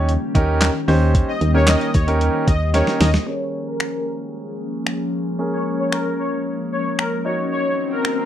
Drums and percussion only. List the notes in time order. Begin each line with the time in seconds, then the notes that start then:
0.09 closed hi-hat
0.35 kick, closed hi-hat
0.62 snare, clap, closed hi-hat
0.88 open hi-hat
1.15 kick, closed hi-hat
1.41 closed hi-hat
1.68 snare, clap, closed hi-hat
1.81 closed hi-hat
1.94 kick, closed hi-hat
2.08 closed hi-hat
2.21 closed hi-hat
2.48 kick, closed hi-hat
2.74 snare, closed hi-hat
2.87 snare
3.01 snare, open hi-hat
3.14 snare
3.80 finger snap
4.87 finger snap
5.92 finger snap
6.99 finger snap
8.05 finger snap